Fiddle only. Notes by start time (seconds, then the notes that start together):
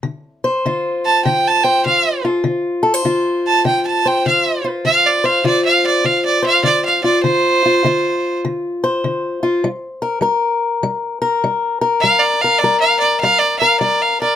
1.06 A5
1.25 G5
1.48 A5
1.64 G5
1.86 F5
3.47 A5
3.66 G5
3.87 A5
4.08 G5
4.27 F5
4.86 F5
5.06 D5
5.26 F5
5.46 D5
5.65 F5
5.87 D5
6.06 F5
6.26 D5
6.46 F5
6.64 D5
6.85 F5
7.04 D5
7.23 C5
12.01 F5
12.20 D5
12.41 F5
12.59 D5
12.80 F5
13.00 D5
13.21 F5
13.39 D5
13.59 F5
13.80 D5
14.02 F5
14.21 D5